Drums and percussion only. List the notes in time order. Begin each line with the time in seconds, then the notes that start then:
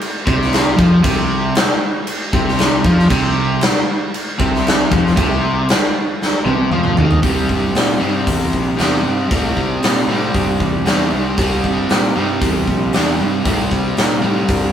0.01 crash
0.27 kick
0.42 snare
0.53 snare, crash
0.79 kick
1.04 kick, crash
1.55 snare, crash
2.07 crash
2.33 kick
2.48 snare
2.59 snare, crash
2.85 kick
2.99 snare
3.10 kick, crash
3.61 snare, crash
4.14 crash
4.40 kick
4.55 snare
4.67 snare, crash
4.92 kick
5.06 snare
5.17 kick, crash
5.69 snare, crash
6.22 snare
6.46 high tom
6.71 mid tom
6.84 mid tom
6.97 floor tom
7.11 floor tom
7.23 kick, open hi-hat
7.49 kick
7.75 snare, open hi-hat
8.27 kick, open hi-hat
8.53 kick
8.78 snare, open hi-hat
9.31 kick, open hi-hat
9.57 kick
9.83 snare, open hi-hat
10.34 kick, open hi-hat
10.60 kick
10.86 snare, open hi-hat
11.37 kick, open hi-hat
11.64 kick
11.89 snare, open hi-hat
12.42 kick, open hi-hat
12.68 kick
12.93 snare, open hi-hat
13.45 kick, open hi-hat
13.71 kick
13.97 snare, open hi-hat
14.48 kick, open hi-hat